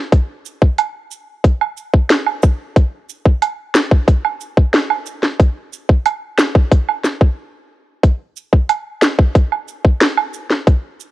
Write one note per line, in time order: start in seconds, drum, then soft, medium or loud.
0.12 kick loud
0.12 closed hi-hat medium
0.46 cabasa medium
0.62 kick medium
0.78 closed hi-hat medium
0.78 high woodblock medium
1.11 cabasa medium
1.44 kick loud
1.44 closed hi-hat medium
1.61 high woodblock medium
1.77 cabasa medium
1.94 kick medium
2.09 finger snap loud
2.09 snare loud
2.09 closed hi-hat medium
2.26 high woodblock medium
2.43 kick medium
2.43 cabasa medium
2.76 kick loud
2.76 closed hi-hat medium
3.09 cabasa medium
3.25 kick medium
3.42 closed hi-hat medium
3.42 high woodblock medium
3.74 finger snap medium
3.74 snare loud
3.74 cabasa medium
3.91 kick medium
4.08 kick loud
4.08 closed hi-hat medium
4.25 high woodblock medium
4.41 cabasa medium
4.57 kick medium
4.73 finger snap loud
4.73 snare loud
4.73 closed hi-hat medium
4.90 high woodblock medium
5.06 cabasa medium
5.23 snare medium
5.40 kick loud
5.40 closed hi-hat medium
5.73 cabasa medium
5.89 kick medium
6.06 closed hi-hat medium
6.06 high woodblock medium
6.38 finger snap medium
6.38 snare loud
6.38 cabasa medium
6.55 kick medium
6.71 kick loud
6.71 closed hi-hat medium
6.88 high woodblock medium
7.04 snare medium
7.04 cabasa medium
7.21 kick medium
8.03 kick loud
8.03 closed hi-hat medium
8.37 cabasa medium
8.53 kick medium
8.69 closed hi-hat medium
8.69 high woodblock medium
9.01 finger snap medium
9.01 snare loud
9.01 cabasa medium
9.19 kick medium
9.35 kick loud
9.35 closed hi-hat medium
9.52 high woodblock medium
9.68 cabasa medium
9.85 kick medium
10.00 finger snap loud
10.00 snare loud
10.00 closed hi-hat medium
10.17 high woodblock medium
10.33 cabasa medium
10.50 snare medium
10.67 kick loud
10.67 closed hi-hat medium
11.00 cabasa medium